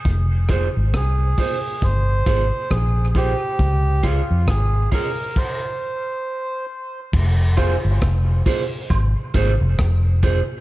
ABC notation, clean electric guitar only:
X:1
M:4/4
L:1/8
Q:"Swing 16ths" 1/4=68
K:Fm
V:1 name="Clean electric guitar"
z [FAc] z [FAc] z [FAc] z [FAc] | z [FAd] z [FAd] z4 | z [FAc] z [FAc] z [FAc] z [FAc] |]